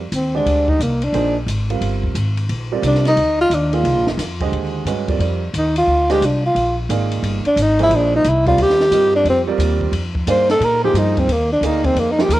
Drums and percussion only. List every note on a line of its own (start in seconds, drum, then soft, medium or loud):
0.12 hi-hat pedal medium
0.12 ride medium
0.46 ride medium
0.68 kick soft
0.81 hi-hat pedal medium
0.81 ride medium
1.02 ride soft
1.14 ride medium
1.48 hi-hat pedal soft
1.48 ride medium
1.70 ride soft
1.82 ride medium
2.04 kick soft
2.15 hi-hat pedal medium
2.15 ride medium
2.37 ride soft
2.49 ride medium
2.83 hi-hat pedal medium
2.83 ride medium
2.95 snare soft
3.05 snare soft
3.05 ride soft
3.17 ride medium
3.51 hi-hat pedal medium
3.51 ride medium
3.73 ride soft
3.85 ride medium
4.07 snare medium
4.19 snare soft
4.19 hi-hat pedal soft
4.19 ride medium
4.40 kick medium
4.40 ride soft
4.53 ride medium
4.86 hi-hat pedal soft
4.86 ride medium
5.08 kick medium
5.08 ride soft
5.20 ride medium
5.54 hi-hat pedal medium
5.54 ride medium
5.76 ride medium
6.10 snare soft
6.10 ride soft
6.22 hi-hat pedal medium
6.22 ride medium
6.56 ride medium
6.90 hi-hat pedal medium
6.90 ride medium
7.11 ride soft
7.23 ride medium
7.45 ride soft
7.57 hi-hat pedal medium
7.57 ride medium
7.79 ride soft
7.91 ride medium
8.24 hi-hat pedal medium
8.24 ride medium
8.46 kick medium
8.46 ride soft
8.58 ride medium
8.70 snare soft
8.80 snare soft
8.92 hi-hat pedal medium
8.92 ride medium
9.26 ride medium
9.60 hi-hat pedal medium
9.60 ride medium
9.81 kick medium
9.93 ride medium
10.15 kick medium
10.27 hi-hat pedal medium
10.27 ride medium
10.49 snare medium
10.49 ride soft
10.61 ride medium
10.95 hi-hat pedal soft
10.95 ride medium
11.17 kick medium
11.17 ride soft
11.29 ride medium
11.63 hi-hat pedal soft
11.63 ride medium
11.84 kick medium
11.84 ride soft
11.96 ride medium
12.19 snare medium
12.30 hi-hat pedal medium
12.30 ride medium